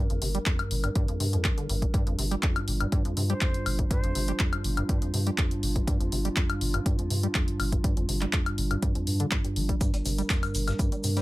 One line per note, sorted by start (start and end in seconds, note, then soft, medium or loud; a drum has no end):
0.00 11.22 G3 medium
0.00 11.22 D4 medium
0.00 1.93 A#4 medium
0.10 0.18 G1 loud
0.10 0.20 F2 medium
0.10 closed hi-hat soft
0.22 0.39 G1 medium
0.22 0.29 C3 medium
0.22 open hi-hat loud
0.35 0.39 G3 loud
0.35 closed hi-hat soft
0.46 0.61 F2 medium
0.46 kick loud
0.46 clap loud
0.46 closed hi-hat medium
0.59 0.72 G2 medium
0.59 closed hi-hat soft
0.59 high woodblock medium
0.71 0.88 G1 medium
0.71 0.78 C3 medium
0.71 open hi-hat medium
0.84 0.90 G2 medium
0.84 closed hi-hat soft
0.84 high woodblock medium
0.95 1.06 G2 loud
0.95 kick loud
0.95 closed hi-hat medium
1.08 1.18 F2 medium
1.08 closed hi-hat soft
1.20 1.37 G2 medium
1.20 1.27 C3 medium
1.20 open hi-hat loud
1.33 1.46 F2 medium
1.33 closed hi-hat soft
1.44 1.52 G2 loud
1.44 kick loud
1.44 clap loud
1.44 closed hi-hat medium
1.57 1.67 D3 medium
1.57 closed hi-hat soft
1.69 1.86 G1 loud
1.69 1.76 G2 medium
1.69 open hi-hat loud
1.82 1.86 A#2 medium
1.82 kick medium
1.82 closed hi-hat soft
1.94 2.04 G2 loud
1.94 9.79 F4 medium
1.94 kick loud
1.94 closed hi-hat medium
2.07 2.15 G1 loud
2.07 2.16 F2 medium
2.07 closed hi-hat soft
2.18 2.36 G1 loud
2.18 2.26 C3 medium
2.18 open hi-hat loud
2.31 2.35 G3 loud
2.31 closed hi-hat soft
2.43 2.57 F2 medium
2.43 kick loud
2.43 clap loud
2.43 closed hi-hat medium
2.56 2.69 G2 medium
2.56 closed hi-hat soft
2.56 high woodblock medium
2.68 2.85 G1 medium
2.68 2.75 C3 medium
2.68 open hi-hat medium
2.80 2.87 G2 medium
2.80 closed hi-hat soft
2.80 high woodblock medium
2.92 3.03 G2 loud
2.92 kick loud
2.92 closed hi-hat medium
3.05 3.15 F2 medium
3.05 closed hi-hat soft
3.17 3.34 G2 medium
3.17 3.24 C3 medium
3.17 open hi-hat loud
3.30 3.34 G3 loud
3.30 3.79 C5 medium
3.30 closed hi-hat soft
3.41 3.56 F2 medium
3.41 kick loud
3.41 clap loud
3.41 closed hi-hat medium
3.54 3.68 G2 medium
3.54 closed hi-hat soft
3.66 3.83 G1 loud
3.66 3.73 C3 medium
3.66 open hi-hat medium
3.66 high woodblock medium
3.79 3.85 G2 medium
3.79 kick medium
3.79 closed hi-hat soft
3.91 4.01 G2 loud
3.91 4.40 C5 medium
3.91 kick loud
3.91 closed hi-hat medium
4.04 4.12 G1 loud
4.04 4.13 F2 medium
4.04 closed hi-hat soft
4.15 4.32 G1 medium
4.15 4.22 C3 medium
4.15 open hi-hat loud
4.28 4.32 G3 loud
4.28 closed hi-hat soft
4.39 4.54 F2 medium
4.39 kick loud
4.39 clap loud
4.39 closed hi-hat medium
4.53 4.66 G2 medium
4.53 closed hi-hat soft
4.53 high woodblock medium
4.64 4.82 G1 medium
4.64 4.72 C3 medium
4.64 open hi-hat medium
4.77 4.84 G2 medium
4.77 closed hi-hat soft
4.77 high woodblock medium
4.89 5.00 G2 loud
4.89 kick loud
4.89 closed hi-hat medium
5.02 5.12 F2 medium
5.02 closed hi-hat soft
5.14 5.31 G2 medium
5.14 5.21 C3 medium
5.14 open hi-hat loud
5.27 5.30 G3 loud
5.27 closed hi-hat medium
5.38 5.53 F2 medium
5.38 kick loud
5.38 clap loud
5.38 closed hi-hat medium
5.51 5.64 G2 medium
5.51 closed hi-hat soft
5.63 5.80 G1 loud
5.63 5.70 C3 medium
5.63 open hi-hat medium
5.76 5.82 G2 medium
5.76 kick medium
5.76 closed hi-hat medium
5.87 5.98 G2 loud
5.87 kick loud
5.87 closed hi-hat medium
6.00 6.08 G1 loud
6.00 6.10 F2 medium
6.00 closed hi-hat soft
6.12 6.29 G1 medium
6.12 6.19 C3 medium
6.12 open hi-hat loud
6.25 6.29 G3 loud
6.25 closed hi-hat medium
6.36 6.51 F2 medium
6.36 kick loud
6.36 clap loud
6.36 closed hi-hat medium
6.50 6.63 G2 medium
6.50 closed hi-hat soft
6.50 high woodblock medium
6.61 6.78 G1 medium
6.61 6.68 C3 medium
6.61 open hi-hat medium
6.74 6.81 G2 medium
6.74 closed hi-hat medium
6.74 high woodblock medium
6.86 6.96 G2 loud
6.86 kick loud
6.86 closed hi-hat medium
6.99 7.08 F2 medium
6.99 closed hi-hat soft
7.10 7.27 G2 medium
7.10 7.18 C3 medium
7.10 open hi-hat loud
7.23 7.27 G3 loud
7.23 closed hi-hat medium
7.35 7.49 F2 medium
7.35 kick loud
7.35 clap loud
7.35 closed hi-hat medium
7.48 7.61 G2 medium
7.48 closed hi-hat soft
7.60 7.77 G1 loud
7.60 7.67 C3 medium
7.60 open hi-hat medium
7.60 high woodblock medium
7.72 7.79 G2 medium
7.72 kick medium
7.72 closed hi-hat medium
7.84 7.95 G2 loud
7.84 kick loud
7.84 closed hi-hat medium
7.97 8.05 G1 loud
7.97 8.07 F2 medium
7.97 closed hi-hat soft
8.09 8.26 G1 medium
8.09 8.16 C3 medium
8.09 open hi-hat loud
8.21 8.25 G3 loud
8.21 clap soft
8.21 closed hi-hat medium
8.33 8.48 F2 medium
8.33 kick loud
8.33 clap loud
8.33 closed hi-hat medium
8.46 8.59 G2 medium
8.46 closed hi-hat soft
8.46 high woodblock medium
8.58 8.75 G1 medium
8.58 8.65 C3 medium
8.58 open hi-hat medium
8.71 8.77 G2 medium
8.71 closed hi-hat medium
8.71 high woodblock medium
8.82 8.93 G2 loud
8.82 kick loud
8.82 closed hi-hat medium
8.95 9.09 F2 medium
8.95 closed hi-hat soft
9.07 9.24 G2 medium
9.07 9.14 A#2 medium
9.07 open hi-hat loud
9.20 9.26 D3 loud
9.20 closed hi-hat medium
9.31 9.42 G2 medium
9.31 kick loud
9.31 clap loud
9.31 closed hi-hat medium
9.44 9.58 G2 medium
9.44 closed hi-hat soft
9.56 9.73 G1 loud
9.56 9.63 G3 loud
9.56 open hi-hat medium
9.69 9.76 G3 loud
9.69 kick medium
9.69 closed hi-hat medium
9.81 9.91 G2 loud
9.81 11.22 A#4 medium
9.81 kick loud
9.81 closed hi-hat medium
9.81 shaker medium
9.94 10.02 G1 loud
9.94 9.98 G3 medium
9.94 closed hi-hat soft
9.94 shaker soft
10.05 10.23 G1 medium
10.05 10.13 C3 medium
10.05 open hi-hat loud
10.05 shaker medium
10.18 10.22 G3 loud
10.18 closed hi-hat medium
10.18 shaker soft
10.30 10.44 F2 medium
10.30 kick loud
10.30 snare loud
10.30 clap loud
10.30 closed hi-hat medium
10.30 shaker medium
10.30 shaker soft
10.43 10.56 G2 medium
10.43 closed hi-hat soft
10.43 high woodblock medium
10.43 shaker soft
10.55 10.72 G1 medium
10.55 10.62 C3 medium
10.55 open hi-hat medium
10.55 shaker medium
10.67 10.74 G2 medium
10.67 snare medium
10.67 closed hi-hat medium
10.67 high woodblock medium
10.67 shaker soft
10.79 10.90 G2 loud
10.79 kick loud
10.79 closed hi-hat medium
10.79 shaker medium
10.92 10.96 G3 medium
10.92 closed hi-hat soft
10.92 shaker soft
11.04 11.21 G2 medium
11.04 11.11 C3 medium
11.04 open hi-hat loud
11.04 shaker medium
11.17 11.21 G3 loud
11.17 11.22 C5 medium
11.17 snare soft
11.17 closed hi-hat medium
11.17 shaker soft